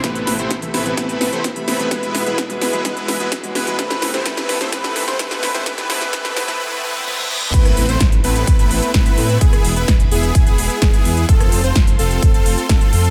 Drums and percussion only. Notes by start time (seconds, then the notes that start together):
0.04 kick, snare, closed hi-hat
0.15 closed hi-hat
0.27 snare, open hi-hat
0.39 closed hi-hat
0.51 kick, snare, closed hi-hat
0.62 closed hi-hat
0.74 snare, open hi-hat
0.86 closed hi-hat
0.97 kick, snare, closed hi-hat
1.09 closed hi-hat
1.21 snare, open hi-hat
1.33 closed hi-hat
1.44 kick, snare, closed hi-hat
1.56 closed hi-hat
1.68 snare, open hi-hat
1.79 closed hi-hat
1.91 kick, snare, closed hi-hat
2.03 closed hi-hat
2.15 snare, open hi-hat
2.26 closed hi-hat
2.38 kick, snare, closed hi-hat
2.50 closed hi-hat
2.61 snare, open hi-hat
2.73 closed hi-hat
2.85 kick, snare, closed hi-hat
2.97 closed hi-hat
3.08 snare, open hi-hat
3.20 closed hi-hat
3.32 kick, snare, closed hi-hat
3.44 closed hi-hat
3.55 snare, open hi-hat
3.67 closed hi-hat
3.79 kick, snare, closed hi-hat
3.90 snare, closed hi-hat
4.02 snare, open hi-hat
4.14 snare, closed hi-hat
4.26 kick, snare, closed hi-hat
4.37 snare, closed hi-hat
4.49 snare, open hi-hat
4.61 snare, closed hi-hat
4.72 kick, snare, closed hi-hat
4.84 snare, closed hi-hat
4.96 snare, open hi-hat
5.08 snare, closed hi-hat
5.19 kick, snare, closed hi-hat
5.31 snare, closed hi-hat
5.43 snare, open hi-hat
5.55 snare, closed hi-hat
5.66 kick, snare, closed hi-hat
5.78 snare, closed hi-hat
5.90 snare, open hi-hat
6.01 snare, closed hi-hat
6.13 kick, snare, closed hi-hat
6.25 snare, closed hi-hat
6.36 snare, open hi-hat
6.48 snare, closed hi-hat
7.07 high tom
7.18 high tom
7.42 mid tom
7.54 kick, closed hi-hat, crash
7.65 cross-stick, closed hi-hat
7.77 open hi-hat
7.89 closed hi-hat
8.00 kick, snare, closed hi-hat
8.12 closed hi-hat
8.24 open hi-hat
8.36 closed hi-hat
8.47 kick, closed hi-hat
8.59 closed hi-hat
8.71 open hi-hat
8.82 closed hi-hat
8.94 kick, snare, closed hi-hat
9.06 closed hi-hat
9.18 open hi-hat
9.29 closed hi-hat
9.41 kick, closed hi-hat
9.53 cross-stick, closed hi-hat
9.65 open hi-hat
9.76 closed hi-hat
9.88 kick, snare, closed hi-hat
10.00 closed hi-hat
10.12 open hi-hat
10.23 closed hi-hat
10.35 kick, closed hi-hat
10.47 closed hi-hat
10.58 open hi-hat
10.70 closed hi-hat
10.82 kick, cross-stick, snare, closed hi-hat
10.94 closed hi-hat
11.05 open hi-hat
11.17 closed hi-hat
11.29 kick, closed hi-hat
11.40 cross-stick, closed hi-hat
11.52 open hi-hat
11.64 closed hi-hat
11.76 kick, snare, closed hi-hat
11.87 closed hi-hat
11.99 open hi-hat
12.11 closed hi-hat
12.22 kick, closed hi-hat
12.34 closed hi-hat
12.46 open hi-hat
12.58 closed hi-hat
12.69 kick, snare, closed hi-hat
12.81 closed hi-hat
12.93 open hi-hat
13.05 closed hi-hat